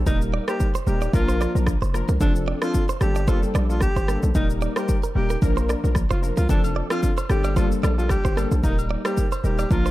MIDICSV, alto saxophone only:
0, 0, Header, 1, 2, 480
1, 0, Start_track
1, 0, Tempo, 535714
1, 58, Time_signature, 4, 2, 24, 8
1, 8878, End_track
2, 0, Start_track
2, 0, Title_t, "Alto saxophone"
2, 0, Program_c, 0, 65
2, 59, Note_on_c, 0, 63, 100
2, 171, Note_off_c, 0, 63, 0
2, 431, Note_on_c, 0, 67, 78
2, 635, Note_off_c, 0, 67, 0
2, 782, Note_on_c, 0, 67, 72
2, 985, Note_off_c, 0, 67, 0
2, 1020, Note_on_c, 0, 65, 97
2, 1369, Note_off_c, 0, 65, 0
2, 1982, Note_on_c, 0, 62, 92
2, 2093, Note_off_c, 0, 62, 0
2, 2357, Note_on_c, 0, 65, 73
2, 2558, Note_off_c, 0, 65, 0
2, 2702, Note_on_c, 0, 67, 82
2, 2904, Note_off_c, 0, 67, 0
2, 2942, Note_on_c, 0, 65, 81
2, 3053, Note_off_c, 0, 65, 0
2, 3314, Note_on_c, 0, 65, 69
2, 3404, Note_off_c, 0, 65, 0
2, 3422, Note_on_c, 0, 67, 92
2, 3770, Note_off_c, 0, 67, 0
2, 3901, Note_on_c, 0, 63, 102
2, 4012, Note_off_c, 0, 63, 0
2, 4275, Note_on_c, 0, 67, 74
2, 4477, Note_off_c, 0, 67, 0
2, 4620, Note_on_c, 0, 67, 79
2, 4824, Note_off_c, 0, 67, 0
2, 5474, Note_on_c, 0, 65, 70
2, 5565, Note_off_c, 0, 65, 0
2, 5710, Note_on_c, 0, 65, 79
2, 5802, Note_off_c, 0, 65, 0
2, 5819, Note_on_c, 0, 62, 99
2, 5931, Note_off_c, 0, 62, 0
2, 6191, Note_on_c, 0, 65, 81
2, 6395, Note_off_c, 0, 65, 0
2, 6541, Note_on_c, 0, 67, 93
2, 6744, Note_off_c, 0, 67, 0
2, 6778, Note_on_c, 0, 65, 85
2, 6891, Note_off_c, 0, 65, 0
2, 7152, Note_on_c, 0, 65, 74
2, 7243, Note_off_c, 0, 65, 0
2, 7260, Note_on_c, 0, 67, 83
2, 7609, Note_off_c, 0, 67, 0
2, 7740, Note_on_c, 0, 63, 99
2, 7852, Note_off_c, 0, 63, 0
2, 8112, Note_on_c, 0, 67, 78
2, 8316, Note_off_c, 0, 67, 0
2, 8462, Note_on_c, 0, 67, 71
2, 8664, Note_off_c, 0, 67, 0
2, 8702, Note_on_c, 0, 65, 97
2, 8878, Note_off_c, 0, 65, 0
2, 8878, End_track
0, 0, End_of_file